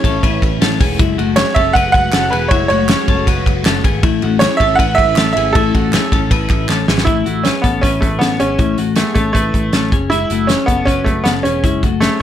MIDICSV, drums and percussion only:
0, 0, Header, 1, 2, 480
1, 0, Start_track
1, 0, Key_signature, 3, "major"
1, 0, Tempo, 380228
1, 1255, Time_signature, 4, 2, 24, 8
1, 15427, End_track
2, 0, Start_track
2, 0, Title_t, "Drums"
2, 51, Note_on_c, 9, 36, 85
2, 57, Note_on_c, 9, 51, 67
2, 177, Note_off_c, 9, 36, 0
2, 183, Note_off_c, 9, 51, 0
2, 292, Note_on_c, 9, 36, 89
2, 299, Note_on_c, 9, 51, 68
2, 418, Note_off_c, 9, 36, 0
2, 425, Note_off_c, 9, 51, 0
2, 533, Note_on_c, 9, 36, 84
2, 544, Note_on_c, 9, 51, 51
2, 659, Note_off_c, 9, 36, 0
2, 670, Note_off_c, 9, 51, 0
2, 778, Note_on_c, 9, 51, 72
2, 784, Note_on_c, 9, 38, 113
2, 904, Note_off_c, 9, 51, 0
2, 910, Note_off_c, 9, 38, 0
2, 1017, Note_on_c, 9, 36, 101
2, 1018, Note_on_c, 9, 46, 77
2, 1018, Note_on_c, 9, 51, 61
2, 1143, Note_off_c, 9, 36, 0
2, 1144, Note_off_c, 9, 46, 0
2, 1144, Note_off_c, 9, 51, 0
2, 1254, Note_on_c, 9, 44, 59
2, 1254, Note_on_c, 9, 51, 69
2, 1255, Note_on_c, 9, 36, 113
2, 1381, Note_off_c, 9, 44, 0
2, 1381, Note_off_c, 9, 51, 0
2, 1382, Note_off_c, 9, 36, 0
2, 1500, Note_on_c, 9, 51, 51
2, 1626, Note_off_c, 9, 51, 0
2, 1721, Note_on_c, 9, 51, 72
2, 1729, Note_on_c, 9, 39, 97
2, 1734, Note_on_c, 9, 38, 107
2, 1847, Note_off_c, 9, 51, 0
2, 1855, Note_off_c, 9, 39, 0
2, 1860, Note_off_c, 9, 38, 0
2, 1970, Note_on_c, 9, 51, 64
2, 1971, Note_on_c, 9, 36, 96
2, 2096, Note_off_c, 9, 51, 0
2, 2097, Note_off_c, 9, 36, 0
2, 2211, Note_on_c, 9, 36, 88
2, 2223, Note_on_c, 9, 51, 74
2, 2337, Note_off_c, 9, 36, 0
2, 2349, Note_off_c, 9, 51, 0
2, 2452, Note_on_c, 9, 36, 88
2, 2462, Note_on_c, 9, 51, 47
2, 2578, Note_off_c, 9, 36, 0
2, 2589, Note_off_c, 9, 51, 0
2, 2681, Note_on_c, 9, 39, 86
2, 2687, Note_on_c, 9, 51, 69
2, 2693, Note_on_c, 9, 38, 111
2, 2807, Note_off_c, 9, 39, 0
2, 2813, Note_off_c, 9, 51, 0
2, 2820, Note_off_c, 9, 38, 0
2, 2936, Note_on_c, 9, 51, 59
2, 3062, Note_off_c, 9, 51, 0
2, 3166, Note_on_c, 9, 51, 66
2, 3170, Note_on_c, 9, 36, 107
2, 3292, Note_off_c, 9, 51, 0
2, 3296, Note_off_c, 9, 36, 0
2, 3406, Note_on_c, 9, 51, 52
2, 3532, Note_off_c, 9, 51, 0
2, 3642, Note_on_c, 9, 51, 69
2, 3645, Note_on_c, 9, 39, 91
2, 3654, Note_on_c, 9, 38, 108
2, 3768, Note_off_c, 9, 51, 0
2, 3771, Note_off_c, 9, 39, 0
2, 3781, Note_off_c, 9, 38, 0
2, 3889, Note_on_c, 9, 36, 92
2, 3889, Note_on_c, 9, 51, 64
2, 4015, Note_off_c, 9, 36, 0
2, 4015, Note_off_c, 9, 51, 0
2, 4130, Note_on_c, 9, 36, 91
2, 4135, Note_on_c, 9, 51, 75
2, 4256, Note_off_c, 9, 36, 0
2, 4262, Note_off_c, 9, 51, 0
2, 4372, Note_on_c, 9, 36, 84
2, 4383, Note_on_c, 9, 51, 53
2, 4498, Note_off_c, 9, 36, 0
2, 4509, Note_off_c, 9, 51, 0
2, 4608, Note_on_c, 9, 39, 82
2, 4614, Note_on_c, 9, 51, 70
2, 4620, Note_on_c, 9, 38, 109
2, 4735, Note_off_c, 9, 39, 0
2, 4740, Note_off_c, 9, 51, 0
2, 4747, Note_off_c, 9, 38, 0
2, 4852, Note_on_c, 9, 36, 97
2, 4855, Note_on_c, 9, 51, 66
2, 4979, Note_off_c, 9, 36, 0
2, 4981, Note_off_c, 9, 51, 0
2, 5090, Note_on_c, 9, 51, 70
2, 5091, Note_on_c, 9, 36, 126
2, 5216, Note_off_c, 9, 51, 0
2, 5217, Note_off_c, 9, 36, 0
2, 5329, Note_on_c, 9, 51, 48
2, 5455, Note_off_c, 9, 51, 0
2, 5566, Note_on_c, 9, 51, 73
2, 5568, Note_on_c, 9, 39, 96
2, 5578, Note_on_c, 9, 38, 110
2, 5692, Note_off_c, 9, 51, 0
2, 5694, Note_off_c, 9, 39, 0
2, 5704, Note_off_c, 9, 38, 0
2, 5808, Note_on_c, 9, 36, 88
2, 5814, Note_on_c, 9, 51, 63
2, 5935, Note_off_c, 9, 36, 0
2, 5940, Note_off_c, 9, 51, 0
2, 6047, Note_on_c, 9, 36, 89
2, 6053, Note_on_c, 9, 51, 76
2, 6173, Note_off_c, 9, 36, 0
2, 6179, Note_off_c, 9, 51, 0
2, 6288, Note_on_c, 9, 36, 87
2, 6299, Note_on_c, 9, 51, 52
2, 6414, Note_off_c, 9, 36, 0
2, 6425, Note_off_c, 9, 51, 0
2, 6515, Note_on_c, 9, 39, 84
2, 6528, Note_on_c, 9, 51, 74
2, 6535, Note_on_c, 9, 38, 105
2, 6641, Note_off_c, 9, 39, 0
2, 6655, Note_off_c, 9, 51, 0
2, 6661, Note_off_c, 9, 38, 0
2, 6775, Note_on_c, 9, 51, 62
2, 6901, Note_off_c, 9, 51, 0
2, 7009, Note_on_c, 9, 36, 123
2, 7009, Note_on_c, 9, 51, 63
2, 7135, Note_off_c, 9, 51, 0
2, 7136, Note_off_c, 9, 36, 0
2, 7254, Note_on_c, 9, 36, 95
2, 7255, Note_on_c, 9, 51, 51
2, 7380, Note_off_c, 9, 36, 0
2, 7382, Note_off_c, 9, 51, 0
2, 7483, Note_on_c, 9, 39, 90
2, 7485, Note_on_c, 9, 51, 68
2, 7497, Note_on_c, 9, 38, 102
2, 7609, Note_off_c, 9, 39, 0
2, 7611, Note_off_c, 9, 51, 0
2, 7623, Note_off_c, 9, 38, 0
2, 7727, Note_on_c, 9, 36, 88
2, 7735, Note_on_c, 9, 51, 65
2, 7853, Note_off_c, 9, 36, 0
2, 7861, Note_off_c, 9, 51, 0
2, 7964, Note_on_c, 9, 36, 95
2, 7967, Note_on_c, 9, 51, 78
2, 8091, Note_off_c, 9, 36, 0
2, 8094, Note_off_c, 9, 51, 0
2, 8196, Note_on_c, 9, 39, 68
2, 8204, Note_on_c, 9, 36, 88
2, 8211, Note_on_c, 9, 51, 51
2, 8322, Note_off_c, 9, 39, 0
2, 8330, Note_off_c, 9, 36, 0
2, 8337, Note_off_c, 9, 51, 0
2, 8442, Note_on_c, 9, 39, 83
2, 8449, Note_on_c, 9, 38, 56
2, 8568, Note_off_c, 9, 39, 0
2, 8575, Note_off_c, 9, 38, 0
2, 8688, Note_on_c, 9, 38, 104
2, 8809, Note_off_c, 9, 38, 0
2, 8809, Note_on_c, 9, 38, 100
2, 8918, Note_on_c, 9, 42, 64
2, 8924, Note_on_c, 9, 36, 102
2, 8935, Note_off_c, 9, 38, 0
2, 9044, Note_off_c, 9, 42, 0
2, 9051, Note_off_c, 9, 36, 0
2, 9167, Note_on_c, 9, 42, 56
2, 9293, Note_off_c, 9, 42, 0
2, 9400, Note_on_c, 9, 42, 79
2, 9412, Note_on_c, 9, 38, 94
2, 9526, Note_off_c, 9, 42, 0
2, 9538, Note_off_c, 9, 38, 0
2, 9641, Note_on_c, 9, 42, 66
2, 9644, Note_on_c, 9, 36, 78
2, 9767, Note_off_c, 9, 42, 0
2, 9770, Note_off_c, 9, 36, 0
2, 9884, Note_on_c, 9, 36, 86
2, 9892, Note_on_c, 9, 42, 83
2, 10010, Note_off_c, 9, 36, 0
2, 10019, Note_off_c, 9, 42, 0
2, 10125, Note_on_c, 9, 36, 79
2, 10132, Note_on_c, 9, 42, 55
2, 10251, Note_off_c, 9, 36, 0
2, 10258, Note_off_c, 9, 42, 0
2, 10365, Note_on_c, 9, 42, 78
2, 10372, Note_on_c, 9, 38, 108
2, 10491, Note_off_c, 9, 42, 0
2, 10498, Note_off_c, 9, 38, 0
2, 10603, Note_on_c, 9, 42, 67
2, 10729, Note_off_c, 9, 42, 0
2, 10839, Note_on_c, 9, 42, 65
2, 10844, Note_on_c, 9, 36, 108
2, 10965, Note_off_c, 9, 42, 0
2, 10970, Note_off_c, 9, 36, 0
2, 11081, Note_on_c, 9, 42, 60
2, 11207, Note_off_c, 9, 42, 0
2, 11305, Note_on_c, 9, 42, 82
2, 11317, Note_on_c, 9, 38, 95
2, 11431, Note_off_c, 9, 42, 0
2, 11443, Note_off_c, 9, 38, 0
2, 11554, Note_on_c, 9, 42, 69
2, 11558, Note_on_c, 9, 36, 86
2, 11680, Note_off_c, 9, 42, 0
2, 11685, Note_off_c, 9, 36, 0
2, 11800, Note_on_c, 9, 36, 83
2, 11802, Note_on_c, 9, 42, 81
2, 11927, Note_off_c, 9, 36, 0
2, 11928, Note_off_c, 9, 42, 0
2, 12043, Note_on_c, 9, 36, 80
2, 12051, Note_on_c, 9, 42, 53
2, 12169, Note_off_c, 9, 36, 0
2, 12177, Note_off_c, 9, 42, 0
2, 12278, Note_on_c, 9, 42, 76
2, 12285, Note_on_c, 9, 38, 102
2, 12405, Note_off_c, 9, 42, 0
2, 12411, Note_off_c, 9, 38, 0
2, 12525, Note_on_c, 9, 36, 105
2, 12525, Note_on_c, 9, 42, 70
2, 12651, Note_off_c, 9, 36, 0
2, 12651, Note_off_c, 9, 42, 0
2, 12770, Note_on_c, 9, 42, 69
2, 12896, Note_off_c, 9, 42, 0
2, 13002, Note_on_c, 9, 42, 57
2, 13128, Note_off_c, 9, 42, 0
2, 13240, Note_on_c, 9, 42, 79
2, 13252, Note_on_c, 9, 38, 90
2, 13366, Note_off_c, 9, 42, 0
2, 13378, Note_off_c, 9, 38, 0
2, 13484, Note_on_c, 9, 36, 82
2, 13486, Note_on_c, 9, 42, 65
2, 13610, Note_off_c, 9, 36, 0
2, 13612, Note_off_c, 9, 42, 0
2, 13724, Note_on_c, 9, 36, 85
2, 13734, Note_on_c, 9, 42, 83
2, 13850, Note_off_c, 9, 36, 0
2, 13860, Note_off_c, 9, 42, 0
2, 13965, Note_on_c, 9, 36, 78
2, 13974, Note_on_c, 9, 42, 56
2, 14091, Note_off_c, 9, 36, 0
2, 14101, Note_off_c, 9, 42, 0
2, 14205, Note_on_c, 9, 42, 76
2, 14211, Note_on_c, 9, 38, 94
2, 14331, Note_off_c, 9, 42, 0
2, 14337, Note_off_c, 9, 38, 0
2, 14455, Note_on_c, 9, 42, 69
2, 14581, Note_off_c, 9, 42, 0
2, 14690, Note_on_c, 9, 36, 101
2, 14692, Note_on_c, 9, 42, 72
2, 14816, Note_off_c, 9, 36, 0
2, 14818, Note_off_c, 9, 42, 0
2, 14933, Note_on_c, 9, 36, 87
2, 14934, Note_on_c, 9, 42, 58
2, 15060, Note_off_c, 9, 36, 0
2, 15060, Note_off_c, 9, 42, 0
2, 15164, Note_on_c, 9, 42, 71
2, 15177, Note_on_c, 9, 38, 93
2, 15291, Note_off_c, 9, 42, 0
2, 15303, Note_off_c, 9, 38, 0
2, 15427, End_track
0, 0, End_of_file